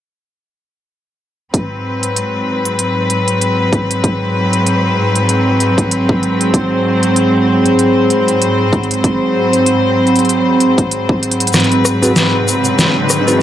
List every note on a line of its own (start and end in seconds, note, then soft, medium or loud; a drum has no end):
1.53 11.50 G#2 medium
1.53 11.50 F#3 medium
1.53 11.50 C4 medium
1.53 13.42 C4 medium
1.53 6.50 B4 medium
1.53 kick loud
1.53 closed hi-hat medium
1.96 13.42 G#4 medium
2.03 closed hi-hat medium
2.16 closed hi-hat medium
2.65 closed hi-hat soft
2.79 closed hi-hat medium
2.84 13.42 F#5 medium
3.10 closed hi-hat medium
3.28 closed hi-hat soft
3.41 closed hi-hat medium
3.73 kick loud
3.73 closed hi-hat soft
3.91 closed hi-hat soft
4.04 kick loud
4.04 closed hi-hat medium
4.23 13.42 B5 medium
4.53 closed hi-hat medium
4.67 closed hi-hat medium
5.15 closed hi-hat medium
5.29 closed hi-hat medium
5.60 closed hi-hat medium
5.78 kick loud
5.78 closed hi-hat medium
5.91 closed hi-hat medium
6.09 kick loud
6.23 closed hi-hat soft
6.41 closed hi-hat medium
6.54 11.50 C5 medium
6.54 kick loud
6.54 closed hi-hat medium
7.03 closed hi-hat medium
7.16 closed hi-hat medium
7.66 closed hi-hat soft
7.79 closed hi-hat medium
8.10 closed hi-hat medium
8.28 closed hi-hat soft
8.42 closed hi-hat medium
8.73 kick loud
8.73 closed hi-hat soft
8.83 closed hi-hat soft
8.91 closed hi-hat medium
8.94 closed hi-hat soft
9.04 kick loud
9.04 closed hi-hat medium
9.53 closed hi-hat soft
9.66 closed hi-hat medium
10.07 closed hi-hat soft
10.16 closed hi-hat soft
10.19 closed hi-hat soft
10.25 closed hi-hat soft
10.29 closed hi-hat medium
10.60 closed hi-hat medium
10.78 kick loud
10.78 closed hi-hat soft
10.91 closed hi-hat medium
11.09 kick loud
11.23 closed hi-hat medium
11.31 closed hi-hat medium
11.40 closed hi-hat medium
11.47 closed hi-hat medium
11.53 13.42 G#2 medium
11.53 13.42 F#3 medium
11.53 13.42 C4 medium
11.53 13.42 B4 medium
11.53 cross-stick medium
11.53 snare soft
11.53 closed hi-hat medium
11.53 riser medium
11.53 shaker soft
11.60 closed hi-hat medium
11.64 closed hi-hat soft
11.72 closed hi-hat soft
11.85 cross-stick medium
11.85 shaker loud
12.02 12.11 C4 medium
12.02 12.11 F#4 medium
12.02 12.11 G#4 medium
12.02 12.11 B4 loud
12.02 closed hi-hat medium
12.02 shaker medium
12.16 snare soft
12.16 closed hi-hat medium
12.16 shaker soft
12.48 shaker medium
12.64 closed hi-hat medium
12.64 shaker soft
12.79 snare medium
12.79 closed hi-hat medium
12.79 shaker soft
13.09 cross-stick medium
13.09 shaker medium
13.28 13.40 C4 medium
13.28 13.40 F#4 medium
13.28 13.40 G#4 medium
13.28 13.40 B4 medium
13.28 closed hi-hat medium
13.28 shaker medium